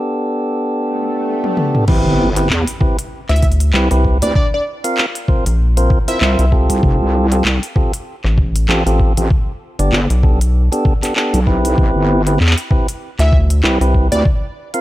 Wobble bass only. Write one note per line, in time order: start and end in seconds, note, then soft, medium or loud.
1.88 2.03 A1 loud
2.06 2.48 G1 loud
2.50 2.65 E2 loud
3.74 3.89 C2 loud
4.22 4.33 D2 medium
6.21 6.36 C2 loud
6.69 6.81 C2 medium
6.83 6.98 F1 loud
7.00 7.42 C2 loud
7.45 7.60 C2 loud
8.68 8.83 A1 medium
9.17 9.28 A1 loud
9.92 10.07 G1 loud
11.34 11.76 B1 loud
11.78 11.93 A1 loud
11.95 12.38 G1 loud
12.40 12.55 E2 loud
13.64 13.78 C2 loud
14.12 14.23 D2 loud